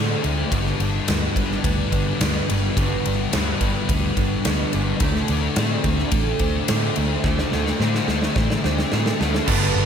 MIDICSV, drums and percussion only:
0, 0, Header, 1, 2, 480
1, 0, Start_track
1, 0, Tempo, 560224
1, 446, Time_signature, 4, 2, 24, 8
1, 8444, End_track
2, 0, Start_track
2, 0, Title_t, "Drums"
2, 205, Note_on_c, 9, 51, 59
2, 291, Note_off_c, 9, 51, 0
2, 444, Note_on_c, 9, 36, 100
2, 446, Note_on_c, 9, 51, 86
2, 530, Note_off_c, 9, 36, 0
2, 532, Note_off_c, 9, 51, 0
2, 569, Note_on_c, 9, 38, 31
2, 654, Note_off_c, 9, 38, 0
2, 686, Note_on_c, 9, 51, 65
2, 772, Note_off_c, 9, 51, 0
2, 924, Note_on_c, 9, 51, 85
2, 929, Note_on_c, 9, 38, 108
2, 1010, Note_off_c, 9, 51, 0
2, 1015, Note_off_c, 9, 38, 0
2, 1166, Note_on_c, 9, 36, 87
2, 1170, Note_on_c, 9, 51, 70
2, 1252, Note_off_c, 9, 36, 0
2, 1256, Note_off_c, 9, 51, 0
2, 1297, Note_on_c, 9, 38, 29
2, 1383, Note_off_c, 9, 38, 0
2, 1407, Note_on_c, 9, 36, 107
2, 1410, Note_on_c, 9, 51, 85
2, 1493, Note_off_c, 9, 36, 0
2, 1495, Note_off_c, 9, 51, 0
2, 1648, Note_on_c, 9, 36, 76
2, 1649, Note_on_c, 9, 51, 66
2, 1733, Note_off_c, 9, 36, 0
2, 1735, Note_off_c, 9, 51, 0
2, 1891, Note_on_c, 9, 51, 92
2, 1896, Note_on_c, 9, 38, 106
2, 1976, Note_off_c, 9, 51, 0
2, 1982, Note_off_c, 9, 38, 0
2, 2138, Note_on_c, 9, 51, 70
2, 2224, Note_off_c, 9, 51, 0
2, 2373, Note_on_c, 9, 36, 110
2, 2376, Note_on_c, 9, 51, 82
2, 2458, Note_off_c, 9, 36, 0
2, 2462, Note_off_c, 9, 51, 0
2, 2618, Note_on_c, 9, 51, 64
2, 2704, Note_off_c, 9, 51, 0
2, 2851, Note_on_c, 9, 51, 88
2, 2856, Note_on_c, 9, 38, 109
2, 2937, Note_off_c, 9, 51, 0
2, 2942, Note_off_c, 9, 38, 0
2, 3090, Note_on_c, 9, 51, 68
2, 3091, Note_on_c, 9, 36, 88
2, 3176, Note_off_c, 9, 51, 0
2, 3177, Note_off_c, 9, 36, 0
2, 3333, Note_on_c, 9, 36, 110
2, 3336, Note_on_c, 9, 51, 90
2, 3419, Note_off_c, 9, 36, 0
2, 3422, Note_off_c, 9, 51, 0
2, 3572, Note_on_c, 9, 36, 78
2, 3572, Note_on_c, 9, 51, 65
2, 3658, Note_off_c, 9, 36, 0
2, 3658, Note_off_c, 9, 51, 0
2, 3811, Note_on_c, 9, 51, 89
2, 3816, Note_on_c, 9, 38, 103
2, 3897, Note_off_c, 9, 51, 0
2, 3902, Note_off_c, 9, 38, 0
2, 4051, Note_on_c, 9, 51, 61
2, 4137, Note_off_c, 9, 51, 0
2, 4284, Note_on_c, 9, 51, 79
2, 4289, Note_on_c, 9, 36, 105
2, 4370, Note_off_c, 9, 51, 0
2, 4374, Note_off_c, 9, 36, 0
2, 4415, Note_on_c, 9, 38, 31
2, 4501, Note_off_c, 9, 38, 0
2, 4525, Note_on_c, 9, 51, 62
2, 4610, Note_off_c, 9, 51, 0
2, 4764, Note_on_c, 9, 51, 83
2, 4769, Note_on_c, 9, 38, 115
2, 4850, Note_off_c, 9, 51, 0
2, 4855, Note_off_c, 9, 38, 0
2, 5004, Note_on_c, 9, 51, 62
2, 5006, Note_on_c, 9, 36, 86
2, 5090, Note_off_c, 9, 51, 0
2, 5091, Note_off_c, 9, 36, 0
2, 5129, Note_on_c, 9, 38, 30
2, 5214, Note_off_c, 9, 38, 0
2, 5239, Note_on_c, 9, 51, 88
2, 5244, Note_on_c, 9, 36, 110
2, 5325, Note_off_c, 9, 51, 0
2, 5330, Note_off_c, 9, 36, 0
2, 5478, Note_on_c, 9, 51, 66
2, 5484, Note_on_c, 9, 36, 71
2, 5563, Note_off_c, 9, 51, 0
2, 5569, Note_off_c, 9, 36, 0
2, 5724, Note_on_c, 9, 51, 94
2, 5730, Note_on_c, 9, 38, 108
2, 5810, Note_off_c, 9, 51, 0
2, 5815, Note_off_c, 9, 38, 0
2, 5961, Note_on_c, 9, 51, 70
2, 6047, Note_off_c, 9, 51, 0
2, 6201, Note_on_c, 9, 38, 57
2, 6203, Note_on_c, 9, 36, 110
2, 6287, Note_off_c, 9, 38, 0
2, 6289, Note_off_c, 9, 36, 0
2, 6324, Note_on_c, 9, 38, 54
2, 6410, Note_off_c, 9, 38, 0
2, 6443, Note_on_c, 9, 38, 59
2, 6529, Note_off_c, 9, 38, 0
2, 6565, Note_on_c, 9, 38, 54
2, 6650, Note_off_c, 9, 38, 0
2, 6687, Note_on_c, 9, 38, 67
2, 6773, Note_off_c, 9, 38, 0
2, 6808, Note_on_c, 9, 38, 61
2, 6894, Note_off_c, 9, 38, 0
2, 6924, Note_on_c, 9, 38, 72
2, 7009, Note_off_c, 9, 38, 0
2, 7046, Note_on_c, 9, 38, 65
2, 7132, Note_off_c, 9, 38, 0
2, 7162, Note_on_c, 9, 36, 100
2, 7164, Note_on_c, 9, 38, 76
2, 7248, Note_off_c, 9, 36, 0
2, 7250, Note_off_c, 9, 38, 0
2, 7286, Note_on_c, 9, 38, 69
2, 7371, Note_off_c, 9, 38, 0
2, 7405, Note_on_c, 9, 38, 79
2, 7491, Note_off_c, 9, 38, 0
2, 7527, Note_on_c, 9, 38, 74
2, 7613, Note_off_c, 9, 38, 0
2, 7640, Note_on_c, 9, 38, 90
2, 7726, Note_off_c, 9, 38, 0
2, 7763, Note_on_c, 9, 38, 83
2, 7848, Note_off_c, 9, 38, 0
2, 7890, Note_on_c, 9, 38, 94
2, 7975, Note_off_c, 9, 38, 0
2, 8008, Note_on_c, 9, 38, 78
2, 8094, Note_off_c, 9, 38, 0
2, 8119, Note_on_c, 9, 49, 116
2, 8119, Note_on_c, 9, 57, 53
2, 8121, Note_on_c, 9, 36, 107
2, 8205, Note_off_c, 9, 49, 0
2, 8205, Note_off_c, 9, 57, 0
2, 8207, Note_off_c, 9, 36, 0
2, 8444, End_track
0, 0, End_of_file